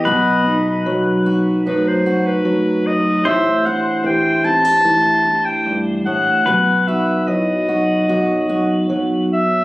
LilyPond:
<<
  \new Staff \with { instrumentName = "Clarinet" } { \time 4/4 \key b \phrygian \tempo 4 = 75 dis''4. r8 b'16 c''8 b'8. dis''8 | e''8 fis''8 g''8 a''4~ a''16 g''8 r16 fis''8~ | fis''8 e''8 dis''2 r8 e''8 | }
  \new Staff \with { instrumentName = "Pedal steel guitar" } { \time 4/4 \key b \phrygian b'1 | c''1 | b'2.~ b'8 r8 | }
  \new Staff \with { instrumentName = "Steel-string acoustic guitar" } { \time 4/4 \key b \phrygian << { fis'8 dis'4 fis'8 dis'8 fis'4. | g'8 e'4 e'16 g'16 e'8 g'4. | fis'8 fis'4 fis'8 fis'8 fis'4. | } \\ { b,4 fis4 fis,4 fis4 | a,4 e4 e4 g,8 a,8 | b,4 fis4 fis,4 fis4 | } >> }
  \new Staff \with { instrumentName = "Vibraphone" } { \time 4/4 \key b \phrygian fis8 dis'8 fis'8 dis'8 a8 dis'8 a8 dis'8 | e'8 d'8 g'8 c'16 d'16 a8 d'8 a8 d'8 | fis8 dis'8 e'16 fis'16 dis'8 b8 dis'8 b4 | }
  \new Staff \with { instrumentName = "Upright bass" } { \clef bass \time 4/4 \key b \phrygian b,,1 | a,,1 | b,,1 | }
>>